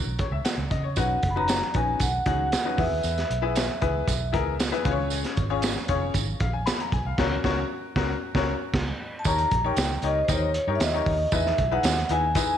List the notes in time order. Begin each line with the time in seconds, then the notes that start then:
0.06 B1
0.19 C#5, kick, closed hi-hat
0.31 C#2 E5
0.44 F#5, muted fingered electric bass stroke, snare, closed hi-hat, tambourine
0.57 C#2
0.70 C#3 D#5, kick, closed hi-hat
0.83 C#5
0.96 B1 C#4 D#4 F#4 B4 F#5, kick, closed hi-hat, tambourine
1.23 F#1, kick, closed hi-hat
1.30 B5
1.36 C#4 D#4 F#4 B4 A#5
1.48 snare, closed hi-hat, tambourine
1.62 snare
1.74 A#1 C#4 D#4 F#4 B4 G#5, kick, closed hi-hat
2.00 B1 F#5, kick, closed hi-hat, tambourine
2.26 C#2 C#4 D#4 F#4 G#4 F#5, kick, closed hi-hat
2.52 snare, closed hi-hat, tambourine
2.65 C#4 D#4 F#4 B4
2.78 E2 B3 E4 G#4 B4 E5, kick, open hi-hat
2.91 D#2
3.03 E2, closed hi-hat, tambourine
3.18 snare, closed hi-hat
3.30 B1, closed hi-hat
3.42 B3 E4 G#4 B4
3.55 snare, closed hi-hat, tambourine
3.81 C#2 B3 E4 G#4 B4, kick, closed hi-hat
4.08 B1, kick, closed hi-hat, tambourine
4.32 C#2 B3 E4 G#4 A#4, kick, closed hi-hat
4.60 snare, closed hi-hat, tambourine
4.72 B3 E4 G#4 B4, closed hi-hat
4.85 C#2 C#4 F4 G#4 B4, kick, closed hi-hat
4.91 C#5
5.10 closed hi-hat, tambourine
5.24 snare, closed hi-hat
5.37 G#1, kick, closed hi-hat
5.50 C#4 F4 G#4 C#5
5.62 snare, closed hi-hat, tambourine
5.76 snare
5.88 F1 C#4 F4 G#4 C#5, kick, closed hi-hat
6.14 G#1, kick, closed hi-hat, tambourine
6.40 A#1 F5, kick, closed hi-hat
6.53 G#5
6.66 B5, snare, closed hi-hat, tambourine
6.80 A#5, closed hi-hat
6.92 B1 G#5, kick, closed hi-hat
7.05 C2 F5
7.18 C#2 C#4 F#4 A#4 C#5, kick, snare, crash
7.44 C#2 C#4 F#4 A#4 C#5, kick, snare
7.96 C#2 C#4 F#4 A#4, kick, snare
8.35 C#2 C#4 F#4 A#4 C#5, kick, snare
8.74 C#2, kick, snare, crash
9.19 A5
9.24 D#2 D#4 G4 A#4 C#5 A#5, kick, closed hi-hat, tambourine
9.38 closed hi-hat
9.51 A#1, kick, closed hi-hat
9.64 D#4 G4 A#4 C#5 G5
9.76 C#2, snare, closed hi-hat, tambourine
10.02 C#2 D#4 G4 A#4 C#5 D#5, closed hi-hat
10.25 D#2 D#4 A#4 C5, kick, closed hi-hat
10.29 G4 C#5 D#5, tambourine
10.54 C#5, closed hi-hat
10.67 G2 D#4 G4 A#4 C#5
10.75 E5
10.80 D#2 D#5, snare, closed hi-hat, tambourine
10.94 D#4 G4 A#4 C#5
11.06 D#2, kick, open hi-hat
11.32 E2 D#4 E4 G#4 B4 E5, kick, closed hi-hat, tambourine
11.46 snare
11.58 B1, kick, closed hi-hat
11.71 D#4 E4 G#4 B4 F#5
11.83 D#2, snare, closed hi-hat, tambourine
11.97 snare
12.09 D#2 D#4 E4 G#4 B4 G#5, closed hi-hat
12.35 D#4 E4 G#4 B4 G#5, kick, closed hi-hat, tambourine